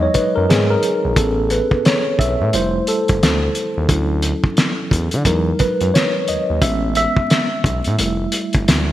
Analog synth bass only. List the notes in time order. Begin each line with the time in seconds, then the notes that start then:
0.37 F#2
0.50 G#2
1.05 A#1
1.17 A1
2.20 B1
2.40 A2
2.54 F1
3.10 G1
3.22 D2
3.77 D#2
3.90 D2
4.92 E2
5.14 D3
5.26 E2
5.81 F#2
6.29 D#2
6.50 D#2
6.63 A1
7.65 B1
7.87 A2
7.99 F1
8.56 G1
8.68 D2